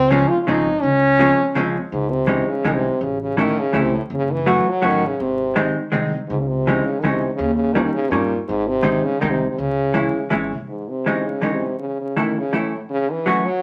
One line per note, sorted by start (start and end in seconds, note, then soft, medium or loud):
0.00 0.23 C#2 loud
0.00 0.12 C4 loud
0.11 0.31 C#3 medium
0.11 0.31 F3 medium
0.11 0.31 G#3 medium
0.11 0.31 C4 medium
0.11 0.30 C#4 loud
0.11 0.31 C#4 medium
0.29 0.40 F4 loud
0.40 0.49 F4 medium
0.47 0.72 G#1 medium
0.47 0.67 C#3 medium
0.47 0.67 F3 medium
0.47 0.67 G#3 medium
0.47 0.67 C4 medium
0.47 0.67 C#4 medium
0.47 0.83 D#4 loud
0.82 1.30 C#2 medium
0.82 1.75 C#4 loud
1.19 1.39 C#3 medium
1.19 1.39 F3 medium
1.19 1.39 G#3 soft
1.19 1.39 C4 medium
1.19 1.39 C#4 medium
1.55 1.79 G#1 medium
1.55 1.75 C#3 medium
1.55 1.75 F3 medium
1.55 1.76 G#3 medium
1.55 1.76 C4 medium
1.55 1.76 C#4 medium
1.92 2.39 C#2 medium
1.92 2.13 G#2 medium
2.11 2.50 C3 medium
2.27 2.48 E3 medium
2.27 2.47 G#3 soft
2.27 2.48 C#4 soft
2.27 2.48 D#4 medium
2.48 2.68 C#3 medium
2.64 2.88 C2 medium
2.64 2.77 D#3 loud
2.64 2.85 E3 medium
2.64 2.84 G#3 soft
2.64 2.84 C#4 soft
2.64 2.85 D#4 medium
2.75 3.04 C3 medium
3.01 3.48 A1 medium
3.01 3.21 C#3 medium
3.22 3.39 C#3 medium
3.37 3.61 D#3 loud
3.37 3.57 E3 medium
3.37 3.57 A3 medium
3.37 3.57 C#4 medium
3.37 3.57 E4 medium
3.59 3.79 C#3 loud
3.73 3.97 C#2 medium
3.73 3.93 E3 medium
3.73 3.93 A3 medium
3.73 3.93 C#4 soft
3.73 3.93 E4 medium
3.78 3.83 A2 medium
3.78 3.92 C3 medium
3.91 4.03 A2 medium
4.10 4.57 F#1 medium
4.14 4.33 C#3 loud
4.32 4.71 E3 medium
4.46 4.66 F#3 medium
4.46 4.66 A3 medium
4.46 4.66 C#4 soft
4.46 4.66 F#4 medium
4.69 4.87 F#3 loud
4.82 5.07 A1 medium
4.82 5.02 F#3 medium
4.82 5.02 A3 medium
4.82 5.02 C#4 medium
4.82 5.02 F#4 medium
4.86 5.07 D#3 loud
5.06 5.22 C#3 medium
5.20 5.67 G#1 medium
5.20 5.76 C3 medium
5.56 5.76 D#3 medium
5.56 5.76 G#3 medium
5.56 5.76 C4 medium
5.56 5.76 D#4 medium
5.92 6.17 C2 medium
5.92 6.12 D#3 medium
5.92 6.12 G#3 medium
5.92 6.12 C4 soft
5.92 6.13 D#4 medium
6.28 6.77 C#2 medium
6.28 6.42 G#2 medium
6.40 6.49 C#3 medium
6.48 6.86 C3 medium
6.67 6.86 E3 medium
6.67 6.87 G#3 medium
6.67 6.87 C#4 medium
6.67 6.87 D#4 medium
6.84 7.01 C#3 medium
7.00 7.26 C#2 medium
7.00 7.11 D#3 medium
7.00 7.23 E3 medium
7.04 7.23 G#3 soft
7.04 7.23 C#4 soft
7.04 7.23 D#4 medium
7.09 7.34 C3 medium
7.35 7.86 D#2 loud
7.35 7.54 C#3 loud
7.55 7.75 C#3 medium
7.73 7.80 D#3 loud
7.73 7.95 G3 medium
7.73 7.95 A#3 medium
7.73 7.95 C#4 soft
7.73 7.96 D#4 medium
7.78 7.85 F3 medium
7.84 7.94 D#3 medium
7.94 8.13 C#3 loud
8.11 8.35 G2 medium
8.11 8.39 A#2 medium
8.11 8.32 G3 medium
8.11 8.32 A#3 medium
8.11 8.31 C#4 medium
8.11 8.32 D#4 medium
8.48 8.96 G#1 medium
8.48 8.69 G#2 medium
8.68 9.05 C3 medium
8.83 9.03 D#3 medium
8.83 9.04 G#3 medium
8.83 9.03 C4 soft
8.83 9.04 D#4 medium
9.04 9.22 C#3 loud
9.20 9.46 C2 medium
9.20 9.32 D#3 loud
9.20 9.41 D#3 medium
9.20 9.41 G#3 medium
9.20 9.41 C4 soft
9.20 9.41 D#4 medium
9.30 9.49 C3 medium
9.51 9.60 C3 medium
9.58 10.06 C#2 medium
9.58 10.32 C#3 loud
9.94 10.14 E3 medium
9.94 10.15 G#3 medium
9.94 10.14 C#4 soft
9.94 10.15 E4 medium
10.30 10.50 G#1 medium
10.30 10.51 E3 medium
10.30 10.51 G#3 medium
10.30 10.52 C#4 medium
10.30 10.51 E4 medium
10.52 10.67 C2 medium
10.68 10.90 G#2 medium
10.89 11.27 C3 medium
11.06 11.26 E3 medium
11.06 11.26 G#3 medium
11.06 11.26 C#4 soft
11.06 11.27 D#4 medium
11.25 11.45 C#3 medium
11.42 11.54 D#3 medium
11.42 11.62 E3 medium
11.42 11.62 G#3 soft
11.42 11.62 C#4 soft
11.42 11.62 D#4 medium
11.53 11.79 C3 medium
11.79 11.97 C#3 medium
12.01 12.18 C#3 medium
12.16 12.40 D#3 medium
12.16 12.36 E3 medium
12.16 12.36 A3 soft
12.16 12.36 C#4 soft
12.16 12.36 E4 medium
12.38 12.57 C#3 medium
12.53 12.82 A2 medium
12.53 12.72 E3 medium
12.53 12.72 A3 medium
12.53 12.72 C#4 soft
12.53 12.72 E4 medium
12.90 13.13 C#3 loud
13.11 13.46 E3 medium
13.26 13.46 F#3 medium
13.26 13.46 A3 soft
13.26 13.46 C#4 medium
13.26 13.46 F#4 medium
13.45 13.62 F#3 loud